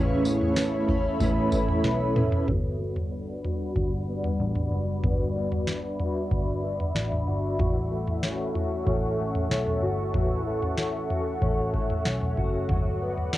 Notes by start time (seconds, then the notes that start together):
Already playing: A1 E3 A3 C#4 E4 A4 B4 C#5 E5 B5
0.25 B3, tambourine
0.41 floor tom
0.56 E3, snare, tambourine
0.88 C#4, kick, floor tom
1.20 A1 A3 B3 C#4 E4 B4, kick, floor tom, tambourine
1.52 E3, kick, tambourine
1.68 floor tom
1.84 B1 B3, snare
2.16 E1 E3 C#4 E4 B4, mid tom
2.32 floor tom
2.48 G1 G3 B3 F#4 D5 F#5 B5, kick, floor tom
2.80 B3
2.96 floor tom
3.12 D4
3.44 F#4, floor tom
3.76 G1 D4, kick, floor tom
4.08 B3
4.24 floor tom
4.40 A1 D4
4.55 floor tom
4.72 F#1 F#4
5.03 G1 B3 F#4 E5, kick, floor tom
5.36 B3
5.52 floor tom
5.67 D4, snare
6.00 F#4, floor tom
6.31 G1 D4, kick, floor tom
6.63 B3
6.80 floor tom
6.95 A1 D4, snare
7.12 floor tom
7.27 G1 F#4
7.58 A1 E3 F#4 A4 F#5 C#6, kick, floor tom
7.91 A3
8.07 floor tom
8.23 C#4, snare
8.54 F#4, floor tom
8.86 A1 C#4, kick, floor tom
9.18 A3
9.35 floor tom
9.50 B1 C#4, snare
9.67 floor tom
9.82 G1 F#4
10.14 A1 E3 F#4, kick, floor tom
10.46 A3
10.62 floor tom
10.78 C#4, snare
11.09 F#4, floor tom
11.42 A1 C#4, kick, floor tom
11.74 A3, kick
11.90 floor tom
12.05 B1 C#4, snare
12.21 floor tom
12.37 F#1 F#4, kick
12.69 G1 F#3 F#4 B4 D5 D6, kick, floor tom
13.02 B3
13.17 floor tom
13.33 D4, snare